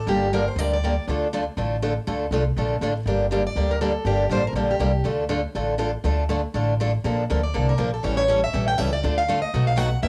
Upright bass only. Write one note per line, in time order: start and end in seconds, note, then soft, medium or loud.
0.07 0.47 G1 medium
0.56 0.96 D2 medium
1.08 1.47 D2 medium
1.57 1.97 A1 medium
2.07 2.27 D2 medium
2.31 2.52 C2 medium
2.57 2.78 A#1 medium
2.81 3.02 A1 medium
3.06 3.46 G1 medium
3.56 3.96 D2 medium
4.05 4.25 G1 medium
4.29 4.51 A1 medium
4.53 4.75 A#1 medium
4.79 5.01 C2 medium
5.05 5.45 D2 medium
5.55 5.95 A1 medium
6.04 6.44 D2 medium
6.54 6.94 A1 medium
7.04 7.24 A#1 medium
7.30 7.51 D2 medium
7.56 7.76 C2 medium
7.79 8.00 A#1 medium
8.04 8.44 A1 medium
8.54 8.75 A#1 medium
8.79 9.00 C#2 medium
9.04 9.44 D2 medium
9.54 9.93 B1 medium
10.03 10.08 E2 medium